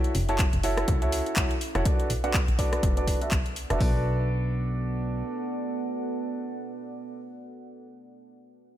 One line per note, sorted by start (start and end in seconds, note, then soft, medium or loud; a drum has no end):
0.00 1.85 C#4 medium
0.00 0.13 E4 medium
0.00 0.13 F#4 medium
0.00 0.13 A4 medium
0.00 0.69 B4 medium
0.00 0.13 C#5 medium
0.00 0.13 E5 medium
0.00 2.64 E5 medium
0.04 closed hi-hat soft
0.15 0.48 F#1 medium
0.15 3.81 F#5 medium
0.15 open hi-hat loud
0.21 3.81 A4 medium
0.29 0.41 E4 medium
0.29 0.41 F#4 medium
0.29 0.41 A4 medium
0.29 0.41 C#5 medium
0.29 0.41 A5 loud
0.29 closed hi-hat soft
0.38 kick loud
0.38 clap loud
0.38 closed hi-hat medium
0.53 0.84 F#1 loud
0.53 closed hi-hat soft
0.63 0.99 E4 medium
0.63 0.99 F#4 medium
0.63 0.99 A4 medium
0.63 0.99 C#5 medium
0.63 0.99 E5 loud
0.63 open hi-hat medium
0.77 cross-stick medium
0.77 closed hi-hat soft
0.88 1.22 C#2 medium
0.88 kick loud
0.88 closed hi-hat medium
1.02 1.35 E4 medium
1.02 1.35 F#4 medium
1.02 1.35 A4 medium
1.02 1.35 C#5 medium
1.02 1.35 E5 medium
1.02 closed hi-hat soft
1.12 open hi-hat loud
1.26 closed hi-hat soft
1.36 1.48 C#2 medium
1.36 1.52 E4 medium
1.36 1.52 F#4 medium
1.36 1.52 A4 medium
1.36 1.52 C#5 medium
1.36 1.52 F#5 medium
1.36 kick loud
1.36 clap loud
1.36 closed hi-hat medium
1.51 closed hi-hat soft
1.61 open hi-hat medium
1.75 1.83 F#1 loud
1.75 1.84 E4 medium
1.75 1.84 F#4 medium
1.75 1.84 A4 medium
1.75 1.84 C#5 medium
1.75 1.84 F#5 loud
1.75 cross-stick medium
1.75 closed hi-hat soft
1.85 3.79 B3 medium
1.85 2.08 D4 medium
1.85 2.08 F#4 medium
1.85 2.08 B4 medium
1.85 kick loud
1.85 closed hi-hat medium
2.00 closed hi-hat soft
2.10 2.44 B1 medium
2.10 open hi-hat loud
2.24 2.36 D4 medium
2.24 2.36 F#4 medium
2.24 2.36 A4 medium
2.24 2.36 B4 medium
2.24 2.36 F#5 loud
2.24 closed hi-hat soft
2.34 kick loud
2.34 clap loud
2.34 closed hi-hat medium
2.48 2.80 B1 medium
2.48 closed hi-hat soft
2.59 2.94 D4 medium
2.59 2.94 F#4 medium
2.59 2.94 A4 medium
2.59 2.94 B4 medium
2.59 2.94 D5 loud
2.59 kick medium
2.59 open hi-hat medium
2.73 3.80 D5 medium
2.73 cross-stick medium
2.73 closed hi-hat soft
2.83 3.17 F#1 medium
2.83 kick loud
2.83 closed hi-hat medium
2.97 3.19 D4 medium
2.97 3.19 F#4 medium
2.97 3.19 A4 medium
2.97 3.19 B4 medium
2.97 3.19 D5 medium
2.97 closed hi-hat soft
3.07 kick medium
3.07 open hi-hat medium
3.21 3.34 D4 medium
3.21 3.34 F#4 medium
3.21 3.34 A4 medium
3.21 3.34 B4 medium
3.21 3.34 E5 medium
3.21 closed hi-hat soft
3.31 3.65 B1 loud
3.31 kick loud
3.31 clap loud
3.31 closed hi-hat medium
3.46 closed hi-hat soft
3.56 open hi-hat medium
3.70 3.78 F#1 medium
3.70 3.79 D4 medium
3.70 3.79 F#4 medium
3.70 3.79 A4 medium
3.70 3.79 B4 medium
3.70 3.79 E5 loud
3.70 cross-stick medium
3.70 closed hi-hat soft
3.80 5.23 B1 medium
3.80 7.17 B3 medium
3.80 7.18 D4 medium
3.80 7.18 F#4 medium
3.80 7.18 A4 medium
3.80 7.18 B4 medium
3.80 7.18 D5 medium
3.80 kick loud
3.80 open hi-hat medium
3.89 7.26 A4 medium
3.96 7.33 D5 medium
4.03 7.40 F#5 medium